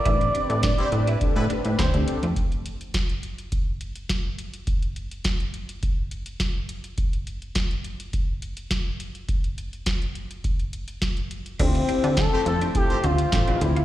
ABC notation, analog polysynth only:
X:1
M:4/4
L:1/16
Q:1/4=104
K:Dm
V:1 name="Analog polysynth"
[CDG=B] z [CDGB]2 z [CDGB]2 z [CDGA] z [CDGB]2 z [CDGA]2 z | z16 | z16 | z16 |
z16 | [CEFG] z [CEFG]2 z [CEFA]2 z [CEFA] z [CFGe]2 z [CEFG]2 z |]